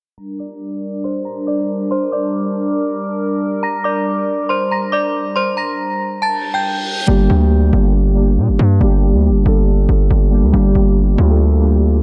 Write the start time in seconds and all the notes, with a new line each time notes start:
0.17 G3 D4 A#4 A#5 A#6
0.39 D5 D6
1.04 C5 C6
1.25 A#5 A#6
1.47 D5 D6
1.91 C5 C6
2.12 D5 D6
3.63 A#5 A#6
3.84 D5 D6
4.49 C5 C6
4.71 A#5 A#6
4.92 D5 D6
5.36 C5 C6
5.57 A#5 A#6
6.22 A5 A6, reverse cymbal
6.54 G5 G6
7.06 G1 G3 A#3 D4 G4
7.30 D2
7.70 G1 G3 A#3 D4 G4
7.82 G3 A#3 D4 G4
8.14 G3 A#3 D4 G4
8.38 A#2
8.49 G1
8.59 G2
8.80 G1 G3 A#3 D4 G4
9.13 D2
9.29 G1
9.44 G1 G3 A#3 D4 A4
9.89 G1
10.10 G1
10.30 G3 A#3 D4 G4
10.43 D2
10.52 G1 G3 A#3 D4 G4
10.75 G1
11.16 D2 G3 A#3 D4 F4
11.27 G3 A#3 D4 A4
11.59 G3 A#3 D4 G4